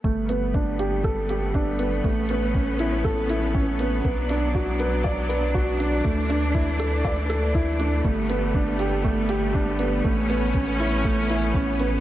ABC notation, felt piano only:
X:1
M:4/4
L:1/8
Q:1/4=120
K:Glyd
V:1 name="Felt piano"
A, B, D G A G D B, | A, B, C E A E C B, | B, D F B d B F D | A, D E A d A E D |
A, B, D G A, G D B, | A, B, C E A, E C B, |]